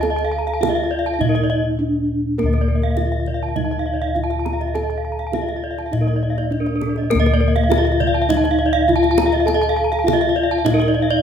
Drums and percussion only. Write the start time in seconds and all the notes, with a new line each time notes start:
0.03 kendang high
0.19 kendang slap
0.48 kendang slap
0.63 kendang high, kendang low
0.76 kendang slap
1.21 kendang low
1.36 kendang slap
2.39 kendang high
2.53 kendang slap
2.82 kendang slap
2.97 kendang high
3.12 kendang slap
3.26 kendang low
3.56 kendang low
3.72 kendang slap
4.16 kendang low
4.31 kendang slap
4.46 kendang high
4.61 kendang slap
4.75 kendang high
4.91 kendang slap
5.19 kendang slap
5.33 kendang high, kendang low
5.49 kendang slap
5.78 kendang slap
5.93 kendang low
6.08 kendang slap
6.38 kendang slap
6.52 kendang low
6.66 kendang slap
6.81 kendang high, kendang low
6.96 kendang slap
7.11 kendang high
7.26 kendang slap
7.56 kendang slap
7.71 kendang high
7.87 kendang slap
8.01 kendang low
8.30 kendang low
8.45 kendang slap
8.89 kendang low
9.04 kendang slap
9.18 kendang high
9.32 kendang slap
9.48 kendang high
9.63 kendang slap
9.93 kendang slap
10.08 kendang high, kendang low
10.22 kendang slap
10.66 kendang low
10.81 kendang slap